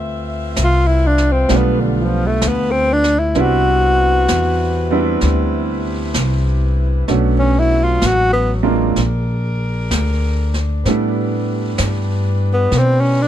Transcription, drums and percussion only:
0.56 snare medium
0.56 hi-hat pedal medium
1.18 snare soft
1.49 brush sweep soft
1.49 snare soft
2.42 snare medium
2.42 hi-hat pedal medium
3.04 snare soft
3.35 brush sweep soft
3.35 snare soft
4.28 snare medium
4.28 hi-hat pedal medium
5.21 brush sweep soft
5.21 snare soft
6.14 snare medium
6.14 hi-hat pedal medium
7.08 brush sweep soft
7.08 snare soft
8.02 snare medium
8.02 hi-hat pedal medium
8.96 brush sweep soft
8.96 snare soft
9.91 snare medium
9.91 hi-hat pedal medium
10.54 snare soft
10.85 brush sweep soft
10.85 snare soft
11.78 snare medium
11.78 hi-hat pedal soft
12.71 brush sweep soft
12.71 snare soft

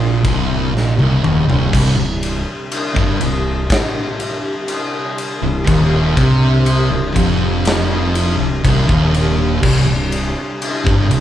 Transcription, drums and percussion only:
0.25 kick loud
0.25 ride medium
0.77 snare medium
0.99 high tom medium
1.24 mid tom medium
1.50 floor tom medium
1.73 kick loud
1.73 crash loud
2.23 ride medium
2.72 ride loud
2.96 kick loud
3.21 ride medium
3.70 kick loud
3.70 snare loud
3.70 ride loud
4.20 ride medium
4.68 ride loud
5.18 ride medium
5.67 kick loud
5.67 ride loud
6.17 kick loud
6.17 ride medium
6.66 ride loud
7.16 kick loud
7.16 ride medium
7.65 snare loud
7.65 ride loud
8.15 ride medium
8.65 kick loud
8.65 ride loud
8.89 kick loud
9.14 ride medium
9.63 kick loud
9.63 crash loud
10.12 ride medium
10.62 ride loud
10.87 kick loud
11.11 ride medium

